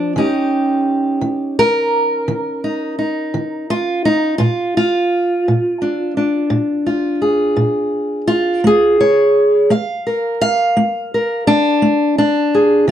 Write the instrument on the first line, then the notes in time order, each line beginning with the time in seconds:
steel-string acoustic guitar
Already playing: F3 D4
0.16 D#3 C#4 D#4 G4
1.21 D#3
1.59 A#4
2.28 D#3
2.64 D#4
2.99 D#4
3.34 D#3
3.70 F4
4.05 D#4
4.38 A#2 F4
4.77 F4
5.48 A#2
5.82 D4
6.17 D4
6.50 A#2
6.86 F4
7.22 G#4
7.56 A#2
8.27 F4
8.64 A#3 G#4
9.01 C#5
9.70 A#3 F5
10.07 A#4
10.41 F5
10.77 A#3
11.14 A#4
11.47 D4
11.82 A#3
12.18 D4
12.55 G#4
12.88 D#3